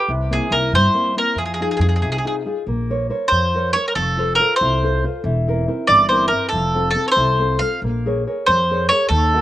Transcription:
Already playing: G4
0.08 C2 C3
0.30 A#3 C4 E4 G#4
0.51 C2 A#3 C4 E4 A#4
0.72 G2 G3 C5
0.94 A#3 C4 E4
1.16 A#3 C4 E4 A#4
1.36 F2 F3 G#4
1.46 G#4
1.54 G#4
1.60 D#4 F4 G#4
1.71 G#4
1.77 F2 G#4
1.81 D#4 F4 G#4
1.89 G#4
1.96 G#4
2.02 C2 C3 G#4
2.12 G#4
2.18 G#4
2.25 D#4 F4 G#4
2.45 D#4 F4 G#4
2.67 A#1 A#3
2.90 A#4 C5 C#5
3.09 A#4 C5 C#5
3.28 F2 C5
3.33 F3
3.55 A#4 C5 C#5
3.73 A#4 C5 C#5
3.88 A#4
3.95 F1 F3 A4
4.17 F4 A4 C5
4.35 A#4
4.40 F4 A4 C5
4.56 C5
4.61 C2 C3
4.83 F4 A4 C5
5.04 F4 A4 C5
5.24 E1 E3
5.47 C4 E4 A#4
5.68 C4 E4 A#4
5.87 G1 E3 D5
6.09 C4 E4 A#4 C5
6.28 C4 A#4
6.32 E4 A#4
6.49 F1 A4
6.54 F3
6.75 C4 F4 A4
6.91 A4
6.95 C4 F4 A4
7.08 C5 C#5
7.16 C2 C3
7.39 C4 F4 A4
7.59 C4 F4 A4 F5
7.82 A#1 A#3
8.06 G#4 A#4 C#5
8.27 G#4 A#4 C#5
8.46 F2 F3 C5
8.71 G#4 A#4 C#5
8.89 G#4 A#4 C#5
9.09 D#2 D#3 A4
9.34 D#4 F#4 A#4

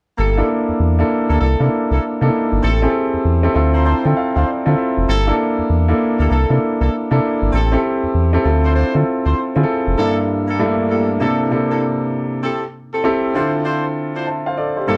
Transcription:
0.18 G1 A#3 E4 G4 A4
0.37 A#3 D4 E4 A4
0.69 E2
0.80 E2
0.99 A#3 D4 E4 A4
1.29 D2 A#3 E4 G4 A4
1.40 C2 A#3 D4 E4 A4
1.60 C3 A#3 D4 E4 A4
1.90 C2 A#3 D4 E4 A4
2.21 C3 A#3 D4 D#4 A4
2.28 E4
2.52 G1
2.63 A1 C4 E4 G4 A4
2.82 C4 E4 G4 G#4
2.90 A4
3.14 E2
3.25 E2
3.43 C4 E4 G4 A4
3.55 D2 C4 E4 F4 A4 C6
3.74 D4 E4 F4 C5 A#5
3.85 D4 E4 F4 C5 A5
4.05 D3 C4 E4 F4 A4 G5
4.17 F5
4.35 D2 D4 E4 F4 C5 F5
4.47 D5
4.66 D3 C4 E4 F4 A4
4.78 E5
4.97 F1
5.08 G1 A#3 E4 G4 A4
5.27 A#3 D4 E4 A4
5.58 E2
5.70 E2
5.88 A#3 D4 E4 A4
6.19 D2 A#3 E4 G4 A4
6.30 C2 A#3 D4 E4 A4
6.49 C3 A#3 D4 E4 A4
6.80 C2 A#3 D4 E4 A4
7.11 C3 A#3 D4 E4 A4
7.42 G1
7.52 A1 C4 E4 G4 A4
7.72 C4 E4 G4 A4
8.03 E2
8.14 E2
8.33 C4 E4 G4 A4
8.44 D2 C4 E4 F4 A4
8.63 D4 E4 F4 C5
8.75 D4 E4 F4 C5
8.94 D3 C4 E4 F4 A4
9.25 D2 D4 E4 F4 C5
9.56 D3 C4 E4 F4 G#4
9.63 A4
9.87 F1
9.97 G2 A#3 D4 E4 G4 A4
10.47 A#3 E4 G4 A4
10.59 G2 A3 D4 E4 A4
10.66 A#3
10.89 A#3 E4 G4 A4
11.20 C3 A#3 D4 E4 A4
11.51 C3 A#3 D4 E4 A4
11.70 A#3 D4 E4 A4
12.42 C4 E4 G4 A4
12.92 C4 E4 G4 A4
13.04 C4 E4 G4 A4
13.34 D3 C4 D4 E4 F4 A4 C5
13.65 D4 E4 F4 C5
14.15 D4 E4 F4 C5
14.27 E5 A5
14.46 C5 F5
14.58 A4 D5
14.77 G4 C5
14.87 G2 A#3 D4 E4 G4 A4

